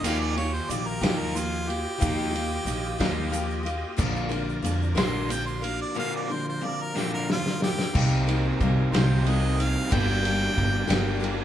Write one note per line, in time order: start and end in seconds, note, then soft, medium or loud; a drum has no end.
0.02 0.58 D#2 loud
0.02 0.37 D#3 medium
0.02 0.37 F3 medium
0.02 0.37 A#3 medium
0.02 0.35 D#4 loud
0.02 0.36 F4 medium
0.02 3.96 F4 medium
0.02 3.96 G4 medium
0.02 0.35 G4 medium
0.02 3.96 D#5 medium
0.02 0.22 F5 medium
0.02 ride loud
0.02 crash loud
0.02 shaker medium
0.20 0.36 D5 medium
0.20 shaker soft
0.36 0.67 D#3 medium
0.36 0.69 A#3 soft
0.36 0.69 F4 medium
0.36 0.70 G4 medium
0.36 0.55 C#5 loud
0.36 ride medium
0.54 0.72 C5 medium
0.54 shaker soft
0.68 0.97 A#1 medium
0.68 1.00 D#3 medium
0.68 1.01 F3 medium
0.68 1.01 A#3 medium
0.68 1.01 F4 medium
0.68 1.00 G4 medium
0.68 0.88 D5 medium
0.68 ride medium
0.68 shaker loud
0.87 1.05 A#4 loud
0.87 shaker soft
1.01 1.84 D#2 medium
1.01 1.36 D#3 medium
1.01 1.31 F3 medium
1.01 1.33 A#3 medium
1.01 1.35 D#4 medium
1.01 1.33 F4 medium
1.01 1.35 G4 medium
1.01 1.20 G4 loud
1.01 snare loud
1.01 ride loud
1.19 1.39 A#4 loud
1.33 1.66 D#3 medium
1.33 1.67 F3 medium
1.33 1.68 A#3 medium
1.33 1.67 F4 medium
1.33 1.64 G4 medium
1.33 shaker loud
1.37 1.71 F4 medium
1.37 ride medium
1.52 shaker soft
1.66 1.99 A#3 soft
1.66 1.99 F4 medium
1.66 2.00 G4 medium
1.66 3.63 G4 loud
1.70 ride medium
1.98 2.57 D#2 loud
1.98 2.33 D#3 medium
1.98 2.34 F3 medium
1.98 2.33 A#3 medium
1.98 2.31 F4 medium
1.98 2.30 G4 medium
1.98 shaker loud
2.02 2.33 D#4 loud
2.02 kick loud
2.02 ride loud
2.18 shaker soft
2.31 2.65 A#3 soft
2.31 2.66 F4 medium
2.31 2.66 G4 medium
2.35 2.65 D#3 medium
2.35 ride medium
2.51 shaker soft
2.65 2.94 A#1 medium
2.65 2.97 D#3 medium
2.65 2.99 F3 medium
2.65 2.98 A#3 medium
2.65 2.98 F4 medium
2.65 2.97 G4 medium
2.65 ride medium
2.65 shaker loud
2.84 shaker soft
2.98 3.82 D#2 medium
2.98 3.34 D#3 medium
2.98 3.29 F3 medium
2.98 3.30 A#3 medium
2.98 3.32 D#4 loud
2.98 3.31 F4 medium
2.98 3.31 G4 medium
2.98 kick medium
2.98 snare loud
2.98 ride medium
3.30 3.63 D#3 medium
3.30 3.65 F3 medium
3.30 3.65 A#3 medium
3.30 3.64 F4 medium
3.30 3.62 G4 medium
3.30 ride medium
3.30 shaker loud
3.50 shaker soft
3.63 3.97 A#3 medium
3.63 3.98 F4 medium
3.63 3.98 G4 medium
3.63 ride medium
3.67 shaker soft
3.96 4.53 A#1 medium
3.96 4.31 A#2 medium
3.96 4.31 D3 medium
3.96 4.31 F3 medium
3.96 4.30 A#3 medium
3.96 4.28 D4 medium
3.96 7.90 F4 medium
3.96 4.28 A#4 medium
3.96 7.90 A#4 medium
3.96 7.90 D5 medium
3.96 kick loud
3.96 crash loud
3.96 shaker medium
4.16 shaker soft
4.29 4.61 A#2 medium
4.29 4.62 D3 medium
4.29 4.61 F3 medium
4.29 4.62 A#3 medium
4.29 4.63 D4 medium
4.29 4.64 A#4 medium
4.29 ride medium
4.49 shaker soft
4.62 4.91 F2 medium
4.62 4.95 A#2 medium
4.62 4.95 D3 medium
4.62 4.96 F3 medium
4.62 4.95 A#3 medium
4.62 4.94 D4 medium
4.62 4.94 A#4 medium
4.62 ride medium
4.62 shaker medium
4.82 shaker soft
4.95 5.78 A#1 medium
4.95 5.30 A#2 medium
4.95 5.31 D3 medium
4.95 5.28 F3 medium
4.95 5.29 A#3 medium
4.95 5.30 D4 medium
4.95 5.29 A#4 medium
4.95 5.34 C6 loud
4.95 snare loud
4.95 ride loud
5.29 5.60 A#2 medium
5.29 5.60 D3 medium
5.29 5.63 F3 medium
5.29 5.63 A#3 medium
5.29 5.63 D4 medium
5.29 5.61 A#4 medium
5.29 5.46 G5 loud
5.29 ride medium
5.29 shaker medium
5.46 5.66 C6 medium
5.46 shaker soft
5.62 5.94 F3 soft
5.62 5.95 A#3 soft
5.62 5.95 D4 medium
5.62 5.96 A#4 medium
5.62 5.80 F5 medium
5.62 ride medium
5.62 shaker soft
5.82 5.96 D5 loud
5.94 6.29 A#2 medium
5.94 6.29 D3 medium
5.94 6.29 F3 medium
5.94 6.29 A#3 medium
5.94 6.29 D4 medium
5.94 6.28 A#4 medium
5.99 6.14 F5 loud
6.16 6.34 D5 medium
6.29 6.59 A#2 medium
6.29 6.59 D3 medium
6.29 6.60 F3 medium
6.29 6.61 A#3 medium
6.29 6.63 D4 medium
6.29 6.62 A#4 medium
6.29 6.47 C5 loud
6.49 6.66 C5 medium
6.61 6.92 A#2 medium
6.61 6.92 D3 medium
6.61 6.95 F3 medium
6.61 6.95 A#3 medium
6.61 6.96 D4 medium
6.61 6.84 D5 loud
6.65 6.94 A#4 medium
6.83 6.99 A#4 loud
6.95 7.30 A#2 medium
6.95 7.29 D3 medium
6.95 7.27 F3 medium
6.95 7.28 A#3 medium
6.95 7.29 D4 medium
6.95 7.12 G4 loud
6.95 7.28 A#4 medium
6.95 snare medium
7.14 7.28 A#4 medium
7.29 7.58 A#2 medium
7.29 7.59 D3 medium
7.29 7.61 F3 medium
7.29 7.61 A#3 medium
7.29 7.60 D4 medium
7.29 7.62 F4 loud
7.29 7.59 A#4 medium
7.29 snare medium
7.46 snare medium
7.60 7.93 F3 soft
7.60 7.94 A#3 medium
7.60 7.94 D4 medium
7.60 7.94 G4 loud
7.60 7.93 A#4 medium
7.60 snare medium
7.79 snare medium
7.94 8.49 C2 medium
7.94 8.27 C3 medium
7.94 8.27 G3 medium
7.94 8.27 A#3 medium
7.94 8.92 C4 loud
7.94 8.28 D#4 medium
7.94 9.91 D#4 medium
7.94 8.93 G4 loud
7.94 8.26 A#4 medium
7.94 kick loud
7.94 crash loud
7.98 9.91 A#4 medium
7.98 9.91 C5 medium
8.27 8.61 A#3 medium
8.27 8.61 D#4 medium
8.27 8.60 A#4 medium
8.27 ride medium
8.60 8.88 C2 medium
8.60 8.93 G3 medium
8.60 8.93 A#3 medium
8.60 8.92 D#4 medium
8.60 8.92 A#4 medium
8.60 kick medium
8.60 ride medium
8.92 9.74 C2 loud
8.92 9.27 C3 medium
8.92 9.23 G3 medium
8.92 9.25 A#3 medium
8.92 9.90 C4 medium
8.92 9.26 D#4 medium
8.92 9.90 G4 medium
8.92 9.26 A#4 medium
8.92 9.30 C5 medium
8.92 snare loud
8.92 ride loud
9.24 9.58 G3 medium
9.24 9.59 A#3 medium
9.24 9.59 D#4 medium
9.24 9.56 A#4 medium
9.24 9.63 D#5 loud
9.24 ride medium
9.57 9.90 A#3 soft
9.57 9.91 D#4 soft
9.57 9.91 A#4 medium
9.57 ride medium
9.61 9.96 F5 loud
9.89 10.46 G1 loud
9.89 10.23 G2 medium
9.89 10.23 D3 medium
9.89 10.24 G3 medium
9.89 10.23 A#3 medium
9.89 10.23 D4 loud
9.89 11.44 D4 medium
9.89 11.44 G4 medium
9.89 10.88 G4 loud
9.89 10.22 A#4 medium
9.89 11.44 A#4 medium
9.89 kick loud
9.89 ride loud
9.94 11.24 G5 loud
10.23 10.53 G3 medium
10.23 10.54 A#3 medium
10.23 10.56 D4 medium
10.23 10.56 A#4 medium
10.23 ride medium
10.54 10.84 G1 medium
10.54 10.88 G3 medium
10.54 10.88 A#3 medium
10.54 10.86 D4 medium
10.54 kick medium
10.58 10.86 A#4 medium
10.58 ride medium
10.88 11.44 G1 medium
10.88 11.23 G2 medium
10.88 11.23 D3 medium
10.88 11.19 G3 medium
10.88 11.20 A#3 medium
10.88 11.21 D4 medium
10.88 11.44 G4 medium
10.88 11.22 A#4 medium
10.88 snare loud
10.88 ride loud
11.20 11.44 G3 medium
11.20 11.44 A#3 medium
11.20 11.44 D4 medium
11.20 11.44 A#4 medium
11.20 ride medium